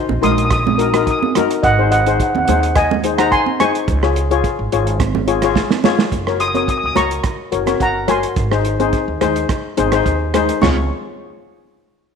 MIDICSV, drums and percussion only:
0, 0, Header, 1, 2, 480
1, 0, Start_track
1, 0, Key_signature, -5, "major"
1, 0, Tempo, 561798
1, 1397, Time_signature, 4, 2, 24, 8
1, 10382, End_track
2, 0, Start_track
2, 0, Title_t, "Drums"
2, 79, Note_on_c, 9, 63, 71
2, 164, Note_off_c, 9, 63, 0
2, 198, Note_on_c, 9, 42, 86
2, 202, Note_on_c, 9, 64, 75
2, 284, Note_off_c, 9, 42, 0
2, 288, Note_off_c, 9, 64, 0
2, 324, Note_on_c, 9, 42, 65
2, 410, Note_off_c, 9, 42, 0
2, 431, Note_on_c, 9, 37, 95
2, 431, Note_on_c, 9, 42, 64
2, 433, Note_on_c, 9, 36, 114
2, 517, Note_off_c, 9, 37, 0
2, 517, Note_off_c, 9, 42, 0
2, 519, Note_off_c, 9, 36, 0
2, 570, Note_on_c, 9, 63, 78
2, 570, Note_on_c, 9, 64, 72
2, 656, Note_off_c, 9, 63, 0
2, 656, Note_off_c, 9, 64, 0
2, 675, Note_on_c, 9, 42, 83
2, 761, Note_off_c, 9, 42, 0
2, 801, Note_on_c, 9, 37, 100
2, 801, Note_on_c, 9, 42, 68
2, 886, Note_off_c, 9, 37, 0
2, 886, Note_off_c, 9, 42, 0
2, 914, Note_on_c, 9, 36, 78
2, 915, Note_on_c, 9, 42, 60
2, 999, Note_off_c, 9, 36, 0
2, 1000, Note_off_c, 9, 42, 0
2, 1047, Note_on_c, 9, 63, 75
2, 1132, Note_off_c, 9, 63, 0
2, 1156, Note_on_c, 9, 37, 88
2, 1156, Note_on_c, 9, 42, 88
2, 1174, Note_on_c, 9, 64, 79
2, 1242, Note_off_c, 9, 37, 0
2, 1242, Note_off_c, 9, 42, 0
2, 1260, Note_off_c, 9, 64, 0
2, 1287, Note_on_c, 9, 42, 69
2, 1372, Note_off_c, 9, 42, 0
2, 1396, Note_on_c, 9, 36, 102
2, 1398, Note_on_c, 9, 42, 64
2, 1482, Note_off_c, 9, 36, 0
2, 1483, Note_off_c, 9, 42, 0
2, 1638, Note_on_c, 9, 42, 88
2, 1723, Note_off_c, 9, 42, 0
2, 1763, Note_on_c, 9, 42, 67
2, 1849, Note_off_c, 9, 42, 0
2, 1877, Note_on_c, 9, 36, 90
2, 1880, Note_on_c, 9, 42, 69
2, 1962, Note_off_c, 9, 36, 0
2, 1965, Note_off_c, 9, 42, 0
2, 2011, Note_on_c, 9, 63, 73
2, 2096, Note_off_c, 9, 63, 0
2, 2115, Note_on_c, 9, 42, 94
2, 2125, Note_on_c, 9, 64, 73
2, 2201, Note_off_c, 9, 42, 0
2, 2210, Note_off_c, 9, 64, 0
2, 2247, Note_on_c, 9, 42, 74
2, 2333, Note_off_c, 9, 42, 0
2, 2354, Note_on_c, 9, 37, 94
2, 2354, Note_on_c, 9, 42, 66
2, 2356, Note_on_c, 9, 36, 126
2, 2439, Note_off_c, 9, 37, 0
2, 2439, Note_off_c, 9, 42, 0
2, 2442, Note_off_c, 9, 36, 0
2, 2489, Note_on_c, 9, 63, 77
2, 2489, Note_on_c, 9, 64, 67
2, 2574, Note_off_c, 9, 63, 0
2, 2574, Note_off_c, 9, 64, 0
2, 2594, Note_on_c, 9, 42, 85
2, 2679, Note_off_c, 9, 42, 0
2, 2721, Note_on_c, 9, 37, 100
2, 2721, Note_on_c, 9, 42, 73
2, 2806, Note_off_c, 9, 37, 0
2, 2806, Note_off_c, 9, 42, 0
2, 2835, Note_on_c, 9, 36, 84
2, 2835, Note_on_c, 9, 42, 55
2, 2920, Note_off_c, 9, 36, 0
2, 2921, Note_off_c, 9, 42, 0
2, 2959, Note_on_c, 9, 63, 64
2, 3044, Note_off_c, 9, 63, 0
2, 3076, Note_on_c, 9, 37, 87
2, 3076, Note_on_c, 9, 42, 83
2, 3083, Note_on_c, 9, 64, 63
2, 3161, Note_off_c, 9, 37, 0
2, 3161, Note_off_c, 9, 42, 0
2, 3169, Note_off_c, 9, 64, 0
2, 3204, Note_on_c, 9, 42, 62
2, 3290, Note_off_c, 9, 42, 0
2, 3314, Note_on_c, 9, 36, 122
2, 3314, Note_on_c, 9, 42, 59
2, 3400, Note_off_c, 9, 36, 0
2, 3400, Note_off_c, 9, 42, 0
2, 3442, Note_on_c, 9, 37, 82
2, 3527, Note_off_c, 9, 37, 0
2, 3555, Note_on_c, 9, 42, 80
2, 3641, Note_off_c, 9, 42, 0
2, 3683, Note_on_c, 9, 42, 54
2, 3769, Note_off_c, 9, 42, 0
2, 3793, Note_on_c, 9, 36, 98
2, 3796, Note_on_c, 9, 42, 64
2, 3878, Note_off_c, 9, 36, 0
2, 3881, Note_off_c, 9, 42, 0
2, 4035, Note_on_c, 9, 42, 77
2, 4121, Note_off_c, 9, 42, 0
2, 4159, Note_on_c, 9, 42, 59
2, 4245, Note_off_c, 9, 42, 0
2, 4270, Note_on_c, 9, 36, 121
2, 4270, Note_on_c, 9, 63, 61
2, 4271, Note_on_c, 9, 37, 86
2, 4271, Note_on_c, 9, 42, 66
2, 4356, Note_off_c, 9, 36, 0
2, 4356, Note_off_c, 9, 63, 0
2, 4357, Note_off_c, 9, 37, 0
2, 4357, Note_off_c, 9, 42, 0
2, 4398, Note_on_c, 9, 63, 78
2, 4398, Note_on_c, 9, 64, 68
2, 4484, Note_off_c, 9, 63, 0
2, 4484, Note_off_c, 9, 64, 0
2, 4508, Note_on_c, 9, 42, 88
2, 4593, Note_off_c, 9, 42, 0
2, 4630, Note_on_c, 9, 37, 93
2, 4630, Note_on_c, 9, 42, 67
2, 4716, Note_off_c, 9, 37, 0
2, 4716, Note_off_c, 9, 42, 0
2, 4746, Note_on_c, 9, 36, 81
2, 4747, Note_on_c, 9, 38, 66
2, 4832, Note_off_c, 9, 36, 0
2, 4833, Note_off_c, 9, 38, 0
2, 4875, Note_on_c, 9, 38, 71
2, 4876, Note_on_c, 9, 63, 74
2, 4960, Note_off_c, 9, 38, 0
2, 4962, Note_off_c, 9, 63, 0
2, 4987, Note_on_c, 9, 64, 75
2, 4990, Note_on_c, 9, 38, 97
2, 5073, Note_off_c, 9, 64, 0
2, 5075, Note_off_c, 9, 38, 0
2, 5115, Note_on_c, 9, 38, 96
2, 5200, Note_off_c, 9, 38, 0
2, 5228, Note_on_c, 9, 36, 93
2, 5230, Note_on_c, 9, 42, 64
2, 5313, Note_off_c, 9, 36, 0
2, 5316, Note_off_c, 9, 42, 0
2, 5357, Note_on_c, 9, 37, 82
2, 5442, Note_off_c, 9, 37, 0
2, 5467, Note_on_c, 9, 42, 76
2, 5553, Note_off_c, 9, 42, 0
2, 5591, Note_on_c, 9, 63, 65
2, 5596, Note_on_c, 9, 42, 54
2, 5676, Note_off_c, 9, 63, 0
2, 5682, Note_off_c, 9, 42, 0
2, 5708, Note_on_c, 9, 36, 88
2, 5713, Note_on_c, 9, 42, 70
2, 5793, Note_off_c, 9, 36, 0
2, 5798, Note_off_c, 9, 42, 0
2, 5944, Note_on_c, 9, 64, 70
2, 5951, Note_on_c, 9, 37, 74
2, 5951, Note_on_c, 9, 42, 84
2, 6029, Note_off_c, 9, 64, 0
2, 6036, Note_off_c, 9, 37, 0
2, 6036, Note_off_c, 9, 42, 0
2, 6075, Note_on_c, 9, 42, 66
2, 6161, Note_off_c, 9, 42, 0
2, 6182, Note_on_c, 9, 37, 80
2, 6182, Note_on_c, 9, 42, 62
2, 6185, Note_on_c, 9, 36, 107
2, 6268, Note_off_c, 9, 37, 0
2, 6268, Note_off_c, 9, 42, 0
2, 6270, Note_off_c, 9, 36, 0
2, 6427, Note_on_c, 9, 42, 71
2, 6512, Note_off_c, 9, 42, 0
2, 6549, Note_on_c, 9, 63, 57
2, 6554, Note_on_c, 9, 37, 80
2, 6554, Note_on_c, 9, 42, 63
2, 6634, Note_off_c, 9, 63, 0
2, 6639, Note_off_c, 9, 37, 0
2, 6639, Note_off_c, 9, 42, 0
2, 6667, Note_on_c, 9, 36, 83
2, 6668, Note_on_c, 9, 42, 59
2, 6752, Note_off_c, 9, 36, 0
2, 6753, Note_off_c, 9, 42, 0
2, 6904, Note_on_c, 9, 37, 77
2, 6904, Note_on_c, 9, 42, 79
2, 6905, Note_on_c, 9, 64, 64
2, 6989, Note_off_c, 9, 37, 0
2, 6989, Note_off_c, 9, 42, 0
2, 6991, Note_off_c, 9, 64, 0
2, 7033, Note_on_c, 9, 42, 62
2, 7118, Note_off_c, 9, 42, 0
2, 7145, Note_on_c, 9, 42, 59
2, 7147, Note_on_c, 9, 36, 110
2, 7231, Note_off_c, 9, 42, 0
2, 7232, Note_off_c, 9, 36, 0
2, 7275, Note_on_c, 9, 37, 84
2, 7361, Note_off_c, 9, 37, 0
2, 7388, Note_on_c, 9, 42, 71
2, 7473, Note_off_c, 9, 42, 0
2, 7517, Note_on_c, 9, 63, 61
2, 7518, Note_on_c, 9, 42, 54
2, 7603, Note_off_c, 9, 42, 0
2, 7603, Note_off_c, 9, 63, 0
2, 7627, Note_on_c, 9, 42, 54
2, 7629, Note_on_c, 9, 36, 86
2, 7713, Note_off_c, 9, 42, 0
2, 7714, Note_off_c, 9, 36, 0
2, 7870, Note_on_c, 9, 37, 80
2, 7870, Note_on_c, 9, 42, 78
2, 7875, Note_on_c, 9, 64, 60
2, 7956, Note_off_c, 9, 37, 0
2, 7956, Note_off_c, 9, 42, 0
2, 7961, Note_off_c, 9, 64, 0
2, 7996, Note_on_c, 9, 42, 60
2, 8082, Note_off_c, 9, 42, 0
2, 8110, Note_on_c, 9, 36, 111
2, 8110, Note_on_c, 9, 37, 92
2, 8110, Note_on_c, 9, 42, 62
2, 8195, Note_off_c, 9, 37, 0
2, 8195, Note_off_c, 9, 42, 0
2, 8196, Note_off_c, 9, 36, 0
2, 8351, Note_on_c, 9, 42, 86
2, 8356, Note_on_c, 9, 63, 64
2, 8436, Note_off_c, 9, 42, 0
2, 8441, Note_off_c, 9, 63, 0
2, 8475, Note_on_c, 9, 37, 88
2, 8475, Note_on_c, 9, 42, 67
2, 8560, Note_off_c, 9, 37, 0
2, 8560, Note_off_c, 9, 42, 0
2, 8593, Note_on_c, 9, 36, 82
2, 8596, Note_on_c, 9, 42, 61
2, 8679, Note_off_c, 9, 36, 0
2, 8682, Note_off_c, 9, 42, 0
2, 8833, Note_on_c, 9, 64, 63
2, 8834, Note_on_c, 9, 37, 87
2, 8834, Note_on_c, 9, 42, 84
2, 8919, Note_off_c, 9, 64, 0
2, 8920, Note_off_c, 9, 37, 0
2, 8920, Note_off_c, 9, 42, 0
2, 8961, Note_on_c, 9, 42, 64
2, 9046, Note_off_c, 9, 42, 0
2, 9070, Note_on_c, 9, 63, 82
2, 9081, Note_on_c, 9, 38, 101
2, 9081, Note_on_c, 9, 43, 98
2, 9081, Note_on_c, 9, 49, 84
2, 9155, Note_off_c, 9, 63, 0
2, 9166, Note_off_c, 9, 38, 0
2, 9166, Note_off_c, 9, 43, 0
2, 9166, Note_off_c, 9, 49, 0
2, 10382, End_track
0, 0, End_of_file